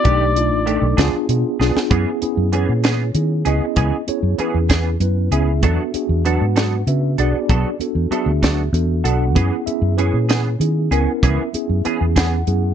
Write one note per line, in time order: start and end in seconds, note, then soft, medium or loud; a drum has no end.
0.00 1.30 D5 loud
0.04 0.51 B1 medium
0.04 0.23 D#3 medium
0.04 0.32 A3 medium
0.04 0.23 A3 medium
0.04 0.32 D4 medium
0.04 0.24 D4 medium
0.04 0.33 D#4 medium
0.04 0.24 G4 loud
0.04 0.33 G4 medium
0.04 kick loud
0.04 closed hi-hat medium
0.35 0.63 A3 medium
0.35 0.64 D4 medium
0.35 0.64 D#4 medium
0.35 0.64 F4 medium
0.35 closed hi-hat medium
0.51 0.79 A1 medium
0.66 0.85 D#3 medium
0.66 0.85 A3 medium
0.66 0.98 A3 medium
0.66 0.85 D4 medium
0.66 0.97 D4 medium
0.66 0.98 D#4 medium
0.66 0.86 G4 medium
0.66 0.99 A4 medium
0.66 closed hi-hat medium
0.82 0.96 B1 medium
0.97 1.12 C#2 medium
0.97 1.17 F3 medium
0.97 1.16 B3 medium
0.97 1.25 B3 medium
0.97 1.16 D4 medium
0.97 1.26 D4 medium
0.97 1.26 F4 medium
0.97 1.16 G#4 medium
0.97 1.26 G#4 medium
0.97 kick medium
0.97 snare medium
0.97 closed hi-hat medium
1.29 1.43 B2 loud
1.29 1.56 B3 medium
1.29 1.57 D4 medium
1.29 1.57 F4 medium
1.29 1.57 G#4 medium
1.29 closed hi-hat medium
1.60 1.74 B1 medium
1.60 1.89 B3 medium
1.60 1.79 B3 soft
1.60 1.79 D4 soft
1.60 1.91 D4 medium
1.60 1.91 F4 medium
1.60 1.78 G#4 soft
1.60 1.91 G#4 medium
1.60 snare medium
1.75 muted fingered electric bass stroke soft
1.75 snare medium
1.90 2.05 F#2 medium
1.90 2.09 E3 medium
1.90 2.18 B3 medium
1.90 2.09 B3 medium
1.90 2.09 C#4 medium
1.90 2.18 C#4 medium
1.90 2.19 E4 medium
1.90 2.10 G#4 medium
1.90 2.19 G#4 medium
1.90 kick loud
1.90 closed hi-hat medium
2.21 2.49 B3 medium
2.21 2.49 C#4 medium
2.21 2.50 E4 medium
2.21 2.50 G#4 medium
2.21 muted fingered electric bass stroke soft
2.21 closed hi-hat medium
2.37 2.65 F#2 medium
2.52 2.71 E3 medium
2.52 2.71 B3 medium
2.52 2.72 C#4 medium
2.52 3.08 C#4 medium
2.52 3.08 E4 medium
2.52 2.72 G#4 medium
2.52 3.09 G#4 medium
2.52 3.08 B4 medium
2.52 3.43 C#5 medium
2.52 closed hi-hat soft
2.69 3.10 A#2 medium
2.84 3.03 E3 soft
2.84 3.03 B3 soft
2.84 3.02 C#4 medium
2.84 3.02 G#4 medium
2.84 snare medium
2.84 closed hi-hat medium
3.14 3.42 D#3 medium
3.14 3.42 B3 medium
3.14 3.43 C#4 soft
3.14 3.43 E4 soft
3.14 3.43 G#4 medium
3.14 closed hi-hat medium
3.45 3.60 C#2 medium
3.45 4.01 B3 medium
3.45 3.65 B3 soft
3.45 4.01 C#4 medium
3.45 3.65 C#4 soft
3.45 4.01 E4 medium
3.45 3.64 G#4 soft
3.45 4.01 G#4 medium
3.45 4.04 D#5 medium
3.45 closed hi-hat medium
3.61 muted fingered electric bass stroke soft
3.76 3.90 C#2 medium
3.76 3.95 E3 medium
3.76 3.95 B3 medium
3.76 3.95 C#4 medium
3.76 3.96 G#4 medium
3.76 kick medium
3.76 closed hi-hat medium
4.07 4.35 B3 medium
4.07 4.35 C#4 medium
4.07 4.36 E4 medium
4.07 4.36 G#4 medium
4.07 4.39 C#5 medium
4.07 muted fingered electric bass stroke soft
4.07 closed hi-hat medium
4.23 4.37 F#2 medium
4.38 4.57 E3 medium
4.38 4.94 B3 medium
4.38 4.58 B3 medium
4.38 4.94 C#4 medium
4.38 4.58 C#4 medium
4.38 4.95 E4 medium
4.38 4.58 G#4 medium
4.38 4.95 G#4 medium
4.38 4.98 B4 medium
4.38 muted fingered electric bass stroke soft
4.38 closed hi-hat soft
4.54 4.96 E2 medium
4.69 4.89 E3 medium
4.69 4.89 B3 soft
4.69 4.89 C#4 medium
4.69 4.88 G#4 medium
4.69 kick medium
4.69 snare medium
4.69 closed hi-hat medium
5.00 5.28 F#2 loud
5.00 5.28 B3 medium
5.00 5.29 C#4 medium
5.00 5.29 E4 medium
5.00 5.29 B4 medium
5.00 closed hi-hat medium
5.31 5.63 C#2 medium
5.31 5.61 B3 medium
5.31 5.51 B3 soft
5.31 5.63 C#4 medium
5.31 5.51 C#4 soft
5.31 5.63 E4 medium
5.31 5.51 G#4 soft
5.31 5.64 G#4 medium
5.31 6.21 E5 medium
5.31 closed hi-hat medium
5.62 5.77 E2 medium
5.62 5.82 F#3 medium
5.62 5.90 B3 medium
5.62 5.82 B3 medium
5.62 5.91 D4 medium
5.62 5.82 D4 medium
5.62 5.91 F#4 medium
5.62 5.82 A4 medium
5.62 5.91 A4 medium
5.62 kick medium
5.62 closed hi-hat medium
5.94 6.22 B3 medium
5.94 6.22 D4 medium
5.94 6.22 F#4 medium
5.94 6.22 G#4 medium
5.94 muted fingered electric bass stroke soft
5.94 closed hi-hat medium
6.09 6.37 E2 medium
6.25 6.44 F#3 medium
6.25 6.80 B3 medium
6.25 6.44 B3 medium
6.25 6.81 D4 medium
6.25 6.44 D4 medium
6.25 6.81 F#4 medium
6.25 6.44 A4 medium
6.25 6.81 B4 medium
6.25 6.84 F#5 medium
6.25 closed hi-hat soft
6.41 6.83 G#2 medium
6.56 6.75 F#3 soft
6.56 6.75 B3 medium
6.56 6.75 D4 medium
6.56 6.75 A4 medium
6.56 snare medium
6.56 closed hi-hat medium
6.87 7.15 C#3 medium
6.87 7.15 B3 medium
6.87 7.15 D4 medium
6.87 7.15 F#4 medium
6.87 7.16 B4 medium
6.87 7.18 E5 medium
6.87 closed hi-hat medium
7.18 7.32 B1 medium
7.18 7.74 B3 medium
7.18 7.38 B3 soft
7.18 7.74 D4 medium
7.18 7.37 D4 soft
7.18 7.74 F#4 medium
7.18 7.74 G#4 medium
7.18 7.37 A4 soft
7.18 7.77 D5 medium
7.18 closed hi-hat medium
7.34 muted fingered electric bass stroke soft
7.49 7.63 B1 medium
7.49 7.68 F#3 medium
7.49 7.68 B3 medium
7.49 7.68 D4 medium
7.49 7.68 A4 medium
7.49 kick loud
7.49 closed hi-hat medium
7.79 8.08 B3 medium
7.79 8.08 D4 medium
7.79 8.08 F#4 medium
7.79 8.09 A4 medium
7.79 muted fingered electric bass stroke soft
7.79 closed hi-hat medium
7.95 8.10 E2 medium
8.11 8.30 F#3 soft
8.11 8.67 B3 medium
8.11 8.30 B3 medium
8.11 8.67 D4 medium
8.11 8.30 D4 medium
8.11 8.67 F#4 medium
8.11 8.67 G#4 medium
8.11 8.31 A4 medium
8.11 9.01 E5 medium
8.11 muted fingered electric bass stroke soft
8.11 closed hi-hat soft
8.26 8.68 D2 medium
8.42 8.62 F#3 soft
8.42 8.62 B3 soft
8.42 8.61 D4 medium
8.42 8.61 A4 soft
8.42 kick medium
8.42 snare loud
8.42 closed hi-hat medium
8.73 9.01 E2 medium
8.73 9.01 B3 medium
8.73 9.01 D4 medium
8.73 9.02 F#4 medium
8.73 9.02 A4 medium
8.73 closed hi-hat medium
9.04 9.36 B1 medium
9.04 9.34 B3 medium
9.04 9.24 B3 soft
9.04 9.36 D4 medium
9.04 9.24 D4 soft
9.04 9.36 F#4 medium
9.04 9.23 A4 soft
9.04 9.36 A4 medium
9.04 9.63 F#5 loud
9.04 closed hi-hat medium
9.35 9.50 F#2 medium
9.35 9.54 E3 medium
9.35 9.63 B3 medium
9.35 9.55 B3 medium
9.35 9.64 C#4 medium
9.35 9.55 C#4 medium
9.35 9.64 E4 medium
9.35 9.55 G#4 medium
9.35 9.64 G#4 medium
9.35 kick medium
9.35 closed hi-hat medium
9.66 9.94 B3 medium
9.66 9.95 C#4 medium
9.66 9.95 E4 medium
9.66 9.95 G#4 medium
9.66 9.97 E5 medium
9.66 muted fingered electric bass stroke soft
9.66 closed hi-hat medium
9.82 10.10 F#2 medium
9.97 10.17 E3 medium
9.97 10.17 B3 soft
9.97 10.53 C#4 medium
9.97 10.17 C#4 medium
9.97 10.54 E4 medium
9.97 10.54 G#4 medium
9.97 10.17 G#4 medium
9.97 10.53 B4 medium
9.97 10.57 C#5 medium
9.97 closed hi-hat medium
10.14 10.55 A#2 medium
10.29 10.48 E3 medium
10.29 10.48 B3 soft
10.29 10.48 C#4 medium
10.29 10.48 G#4 medium
10.29 snare medium
10.29 closed hi-hat medium
10.59 10.88 D#3 medium
10.59 10.88 B3 medium
10.59 10.88 C#4 medium
10.59 10.88 E4 medium
10.59 10.88 G#4 medium
10.59 closed hi-hat medium
10.91 11.05 C#2 medium
10.91 11.47 B3 medium
10.91 11.11 B3 soft
10.91 11.47 C#4 medium
10.91 11.11 C#4 medium
10.91 11.47 E4 medium
10.91 11.10 G#4 medium
10.91 11.47 A#4 medium
10.91 closed hi-hat medium
11.07 muted fingered electric bass stroke soft
11.23 11.37 C#2 medium
11.23 11.42 E3 medium
11.23 11.42 B3 medium
11.23 11.42 C#4 medium
11.23 11.42 G#4 medium
11.23 12.13 E5 medium
11.23 kick medium
11.23 closed hi-hat medium
11.53 11.81 B3 medium
11.53 11.82 C#4 medium
11.53 11.82 E4 medium
11.53 11.82 G#4 medium
11.53 muted fingered electric bass stroke soft
11.53 closed hi-hat medium
11.69 11.83 F#2 medium
11.85 12.04 E3 medium
11.85 12.40 B3 medium
11.85 12.04 B3 soft
11.85 12.40 C#4 medium
11.85 12.04 C#4 medium
11.85 12.41 E4 medium
11.85 12.04 G#4 medium
11.85 12.41 G#4 medium
11.85 muted fingered electric bass stroke soft
11.85 closed hi-hat medium
12.01 12.42 E2 medium
12.16 12.35 E3 soft
12.16 12.35 B3 medium
12.16 12.35 C#4 soft
12.16 12.35 G#4 medium
12.16 12.74 F#5 medium
12.16 kick medium
12.16 snare loud
12.16 closed hi-hat medium
12.47 12.74 F#2 medium
12.47 12.74 B3 medium
12.47 12.74 C#4 medium
12.47 12.74 E4 medium
12.47 12.74 G#4 medium
12.47 closed hi-hat soft